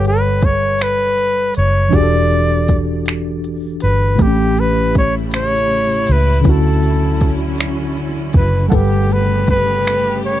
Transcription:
Already playing: fingered electric bass G1, tine electric piano G3 A4 B4 C#5 F#5
0.05 flugelhorn B4, closed hi-hat
0.42 flugelhorn C#5, kick, closed hi-hat
0.79 flugelhorn B4, finger snap, closed hi-hat
1.18 closed hi-hat
1.54 fingered electric bass F#1, flugelhorn C#5, closed hi-hat
1.89 tine electric piano E3 D4 F#4, kick, closed hi-hat
1.94 fingered electric bass E1, tine electric piano G4 G#4, flugelhorn D5
2.03 tine electric piano A4
2.31 closed hi-hat
2.68 kick, closed hi-hat
3.06 finger snap, closed hi-hat
3.44 closed hi-hat
3.80 fingered electric bass G1, flugelhorn B4, closed hi-hat
4.15 tine electric piano A2 A3, kick, closed hi-hat
4.19 fingered electric bass A1, string section C#3 G3 A3 E4, tine electric piano C4 G4, flugelhorn G4
4.27 tine electric piano C#4
4.57 flugelhorn B4, closed hi-hat
4.95 flugelhorn C#5, kick, closed hi-hat
5.31 finger snap, closed hi-hat
5.36 flugelhorn C#5
5.71 closed hi-hat
6.07 fingered electric bass C#2, closed hi-hat
6.12 flugelhorn B4
6.41 tine electric piano D3 C#4, flugelhorn B4, closed hi-hat
6.45 fingered electric bass D2, string section D3 F#3 C#4, tine electric piano E4 F#4, kick
6.50 flugelhorn A4
6.83 closed hi-hat
7.21 kick, closed hi-hat
7.58 finger snap, closed hi-hat
7.97 closed hi-hat
8.33 fingered electric bass F#1, flugelhorn B4, kick, closed hi-hat
8.68 fingered electric bass G1, tine electric piano G3 A4 F#5, flugelhorn A4, kick, closed hi-hat
8.72 string section C#3 A3 B3 G4, flugelhorn G4, tine electric piano B4
9.10 flugelhorn B4, closed hi-hat
9.47 flugelhorn B4, kick, closed hi-hat
9.85 finger snap, closed hi-hat
10.23 flugelhorn C#5, closed hi-hat

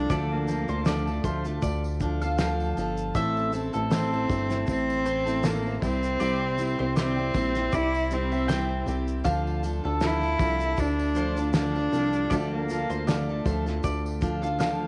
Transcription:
Already playing: cello D4, steel-string acoustic guitar A4
0.09 analog synth bass D2, steel-string acoustic guitar D3 F3 D4 F4 A4, cello A3, mandolin D5, kick, tambourine, shaker
0.31 cello A#3
0.48 steel-string acoustic guitar F3 D4 F4 A4, tambourine, shaker
0.68 analog synth bass D2, steel-string acoustic guitar D4 F4 A4, mandolin C5, shaker
0.85 steel-string acoustic guitar D3 F3 D4 F4 A4, cello A3, mandolin D5, snare, tambourine, shaker
1.07 steel-string acoustic guitar D4 F4 A4, tambourine
1.24 analog synth bass D2, steel-string acoustic guitar F3 D4 F4 A4, mandolin C5, kick, tambourine, shaker
1.45 steel-string acoustic guitar D4 F4 A4, shaker
1.62 analog synth bass D2, mandolin D5, kick, tambourine, shaker
1.84 tambourine
2.00 steel-string acoustic guitar F3 D4 F4 A4, kick, shaker
2.22 steel-string acoustic guitar D4 F4 A4, mandolin F5, tambourine, shaker
2.38 steel-string acoustic guitar D3 F3 D4 F4 A4, mandolin F5, snare, tambourine, shaker
2.60 tambourine
2.77 analog synth bass G1, steel-string acoustic guitar F3 D4 F4 A4, tambourine, shaker
2.97 shaker
3.15 analog synth bass A1, steel-string acoustic guitar A2 E3 A3 C4 E4 A4, mandolin E5, kick, tambourine, shaker
3.37 tambourine
3.52 steel-string acoustic guitar A3 C4 E4 A4, tambourine, shaker
3.73 analog synth bass A1, steel-string acoustic guitar A3 C4 E4 A4, mandolin A4, shaker
3.90 steel-string acoustic guitar A2 E3 A3 C4 E4 A4, cello C4, snare, tambourine, shaker
4.12 steel-string acoustic guitar A3 C4 E4 A4, tambourine
4.29 analog synth bass G1, steel-string acoustic guitar A3 C4 E4 A4, kick, tambourine, shaker
4.49 steel-string acoustic guitar A3 C4 E4 A4, snare, shaker
4.67 analog synth bass A1, cello C4, kick, tambourine, shaker
4.90 tambourine
5.04 steel-string acoustic guitar A3 C4 E4 A4, mandolin C5, shaker
5.26 steel-string acoustic guitar A3 C4 E4 A4, tambourine, shaker
5.43 steel-string acoustic guitar A2 E3 A3 C4 E4 A4, cello A#3, snare, tambourine, shaker
5.64 steel-string acoustic guitar A3 C4 E4 A4, tambourine
5.82 analog synth bass C2, steel-string acoustic guitar G3 C4 E4 G4, cello C4, kick, tambourine, shaker
6.03 shaker
6.20 analog synth bass C2, steel-string acoustic guitar C3 G3 C4 E4 G4, mandolin D5, tambourine, shaker
6.58 steel-string acoustic guitar G3 C4 E4 G4, tambourine, shaker
6.79 analog synth bass C2, steel-string acoustic guitar C4 E4 G4, mandolin C5
6.96 steel-string acoustic guitar C3 G3 C4 E4 G4, cello C4, mandolin D5, snare, tambourine, shaker
7.17 steel-string acoustic guitar C4 E4 G4
7.34 analog synth bass A#1, steel-string acoustic guitar G3 C4 E4 G4, mandolin C5, kick, tambourine, shaker
7.55 steel-string acoustic guitar C4 E4 G4, snare, shaker
7.72 analog synth bass C2, cello E4, mandolin D5, kick, tambourine, shaker
7.94 tambourine
8.11 steel-string acoustic guitar G3 C4 E4 G4, cello C4, shaker
8.32 steel-string acoustic guitar C4 E4 G4, mandolin E5, tambourine
8.48 steel-string acoustic guitar C3 G3 C4 E4 G4, mandolin G5, snare, tambourine, shaker
8.86 analog synth bass C2, steel-string acoustic guitar G3 C4 E4 G4, tambourine, shaker
9.08 shaker
9.24 analog synth bass D2, steel-string acoustic guitar D3 F3 D4 F4 A4, mandolin F5, kick, tambourine, shaker
9.47 tambourine
9.63 steel-string acoustic guitar F3 D4 F4 A4, tambourine, shaker
9.83 analog synth bass D2, steel-string acoustic guitar D4 F4 A4, mandolin A4
10.01 steel-string acoustic guitar D3 F3 D4 F4 A4, cello E4, snare, tambourine, shaker
10.21 steel-string acoustic guitar D4 F4 A4, tambourine
10.39 analog synth bass C2, steel-string acoustic guitar F3 D4 F4 A4, kick, tambourine, shaker
10.59 steel-string acoustic guitar D4 F4 A4, shaker
10.77 analog synth bass D2, cello D4, kick, tambourine, shaker
10.99 tambourine
11.15 steel-string acoustic guitar F3 D4 F4 A4, mandolin C5, shaker
11.36 steel-string acoustic guitar D4 F4 A4, tambourine, shaker
11.53 steel-string acoustic guitar D3 F3 D4 F4 A4, cello D4, snare, tambourine, shaker
11.75 steel-string acoustic guitar D4 F4 A4, tambourine
11.91 analog synth bass C2, steel-string acoustic guitar F3 D4 F4 A4, tambourine, shaker
12.13 shaker
12.30 analog synth bass D2, steel-string acoustic guitar D3 F3 D4 F4 A4, cello A3, mandolin D5, kick, tambourine, shaker
12.54 cello A#3
12.68 steel-string acoustic guitar F3 D4 F4 A4, tambourine, shaker
12.90 analog synth bass D2, steel-string acoustic guitar D4 F4 A4, mandolin C5, shaker
13.07 steel-string acoustic guitar D3 F3 D4 F4 A4, cello A3, mandolin D5, snare, tambourine, shaker
13.29 steel-string acoustic guitar D4 F4 A4
13.45 analog synth bass D2, steel-string acoustic guitar F3 D4 F4 A4, mandolin C5, kick, tambourine, shaker
13.66 steel-string acoustic guitar D4 F4 A4, snare, shaker
13.84 analog synth bass D2, mandolin D5, kick, tambourine, shaker
14.06 tambourine
14.21 steel-string acoustic guitar F3 D4 F4 A4, kick, shaker
14.42 steel-string acoustic guitar D4 F4 A4, mandolin F5, shaker
14.59 steel-string acoustic guitar D3 F3 D4 F4 A4, mandolin F5, snare, tambourine, shaker

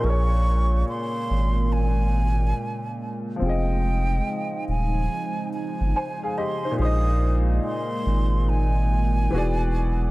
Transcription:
Already playing: upright piano A#2
0.00 ambient pad C#3 G#3 A#3 C#4, upright piano A#3 G#4
0.04 sub bass A#1, upright piano A#4, flute C#6
0.10 upright piano C#5
0.89 flute C6
1.31 sub bass G#1
1.73 flute G#5
3.36 upright piano F3 C4
3.41 sub bass F1, ambient pad F3 D#4, upright piano F4, flute G5
3.46 upright piano G#4 D#5
4.69 sub bass D#1, flute G#5
5.54 flute G#5
5.81 sub bass G1
5.96 upright piano C5 G#5
6.23 upright piano G#4 F5
6.38 upright piano G4 D#5, flute C6
6.65 upright piano D#4 C5
6.71 upright piano A#2 A#3
6.78 sub bass A#1, ambient pad A#3, upright piano G#4 C5, flute D#6
6.85 upright piano D#5
7.65 flute C6
8.06 sub bass G#1
8.49 flute G#5
9.31 sub bass E1, ambient pad D3 F#3 E4, upright piano E3 B3 F#4
9.36 upright piano G#4 D5

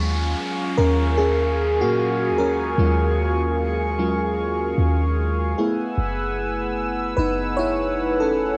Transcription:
Already playing: 808-style bass D#2, fm electric piano F#3 G#3 C#4 F4, analog synth pad G#4 F5 G#5 C#6, downlifter
0.78 808-style bass D#2, fm electric piano C#4 A#4
1.18 fm electric piano C#4 G#4
1.81 808-style bass A#2, fm electric piano A#3 F#4
2.30 808-style bass D#2
2.38 fm electric piano C#4 A#4
2.78 808-style bass D#2, fm electric piano F#3 G#3 C#4 F4
3.98 fm electric piano F#3 G#3 C#4 F4
4.78 808-style bass D#2
5.57 fm electric piano A3 B3 E4 G#4, analog synth pad B4 F#5 G#5 E6
5.98 808-style bass F#1
7.17 808-style bass F#1, fm electric piano D#4 B4
7.57 fm electric piano E4 C#5
8.20 fm electric piano C#4 A4

